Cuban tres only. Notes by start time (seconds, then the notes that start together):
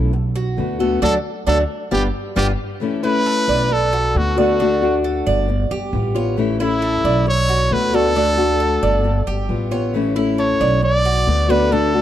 0.36 F#4
0.80 A4
1.02 D4 F#4 A4
1.47 D4 F#4 A4
1.91 F4 G4 B4
2.36 F4 G4 B4
3.04 E4
3.26 A4
3.49 D5
3.93 F#4
4.38 D5
4.60 D4
5.04 A4
5.27 D5
5.71 G4
6.16 C#5
6.60 E4
6.82 A4
7.05 D5
7.49 F#4
7.94 D5
8.16 D4
8.60 A4
8.83 D5
9.27 G4
9.72 C#5
10.16 E4
10.38 A4
10.61 D5
11.05 F#4
11.50 D5
11.72 D4